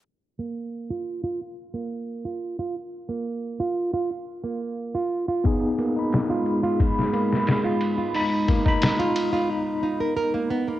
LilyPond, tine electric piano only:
\new Staff \with { instrumentName = "Tine electric piano" } { \time 4/4 \key aes \dorian \tempo 4 = 89 r1 | r1 | <ces' ees' aes'>8. <ees' ces'''>2.~ <ees' ces'''>16 | <ees' ces'''>8. <ees' ces'''>4~ <ees' ces'''>16 r2 | }